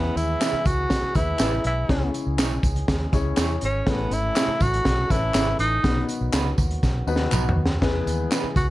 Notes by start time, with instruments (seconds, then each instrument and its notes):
Already playing: fingered electric bass E2, upright piano E3 E4 G#4 B4 E5 G#5, tonewheel organ E3 G#3 B3 G#4, tenor saxophone B3
0.16 fingered electric bass D#2, tenor saxophone E4, closed hi-hat, tambourine
0.41 clean electric guitar E4 G#4 B4 E5, snare, clap, closed hi-hat, tambourine
0.53 muted fingered electric bass stroke
0.65 fingered electric bass C#2, tenor saxophone F#4, kick, closed hi-hat, tambourine
0.90 kick, snare, closed hi-hat, tambourine
1.03 muted fingered electric bass stroke
1.14 fingered electric bass D#2, upright piano E4 G#4 B4 E5, tenor saxophone E4, kick, closed hi-hat, tambourine
1.39 fingered electric bass A1, clean electric guitar E4 G#4 B4 E5, snare, clap, closed hi-hat, tambourine
1.64 fingered electric bass B1, tenor saxophone E4, closed hi-hat
1.88 fingered electric bass C#2, upright piano C#3 C#4 E4 G#4 C#5, tonewheel organ G#3 C#4, kick, snare, closed hi-hat
2.14 closed hi-hat, tambourine
2.27 fingered electric bass C#2
2.38 fingered electric bass B1, clean electric guitar C#4 E4 G#4 C#5, snare, clap, closed hi-hat, tambourine
2.63 fingered electric bass C#2, kick, closed hi-hat, tambourine
2.76 closed hi-hat
2.88 fingered electric bass D#2, kick, snare, closed hi-hat, tambourine
3.12 fingered electric bass C#2, upright piano C#4 E4 G#4 C#5, kick, snare, closed hi-hat, tambourine
3.37 fingered electric bass E2, clean electric guitar C#4 E4 G#4 C#5, snare, clap, closed hi-hat, tambourine
3.61 fingered electric bass G#1, tenor saxophone C#4, closed hi-hat, tambourine
3.86 fingered electric bass A1, upright piano A2 C#4 E4 A4 C#5, tonewheel organ A3 A4, tenor saxophone B3, kick, snare, closed hi-hat
4.11 fingered electric bass G#1, tenor saxophone E4, closed hi-hat, tambourine
4.35 clean electric guitar C#4 E4 A4 C#5, snare, clap, closed hi-hat, tambourine
4.48 muted fingered electric bass stroke
4.60 fingered electric bass A1, tenor saxophone F#4, kick, closed hi-hat, tambourine
4.74 closed hi-hat
4.85 fingered electric bass B1, kick, snare, closed hi-hat, tambourine
5.09 fingered electric bass A1, upright piano C#4 E4 A4 B4, tenor saxophone E4, kick, snare, closed hi-hat, tambourine
5.34 fingered electric bass G#1, clean electric guitar C#4 E4 A4 C#5, snare, clap, closed hi-hat, tambourine
5.59 fingered electric bass A1, tenor saxophone D#4, closed hi-hat, tambourine
5.83 fingered electric bass B1, upright piano B2 B3 D#4 F#4 B4, tonewheel organ D#3 F#3 B3 F#4, kick, snare, closed hi-hat, tambourine
6.09 closed hi-hat, tambourine
6.21 fingered electric bass B1
6.33 fingered electric bass C#2, clean electric guitar B3 D#4 F#4 B4, snare, clap, closed hi-hat, tambourine
6.58 fingered electric bass D#2, kick, closed hi-hat, tambourine
6.71 closed hi-hat
6.83 fingered electric bass B1, kick, snare, tambourine
7.07 fingered electric bass D#2, upright piano B3 D#4 F#4 B4, tambourine
7.16 snare
7.31 fingered electric bass B1, clean electric guitar B3 D#4 F#4 B4, clap, mid tom, tambourine
7.49 floor tom
7.56 fingered electric bass D#2
7.66 snare
7.81 fingered electric bass E2, upright piano E3 B3 E4 G#4 B4, tonewheel organ E3 G#3 G#4, kick, snare, splash
8.06 fingered electric bass D#2, closed hi-hat, tambourine
8.31 clean electric guitar B3 E4 G#4 B4, snare, clap, closed hi-hat, tambourine
8.44 muted fingered electric bass stroke
8.56 fingered electric bass C#2, tenor saxophone F#4, kick, closed hi-hat, tambourine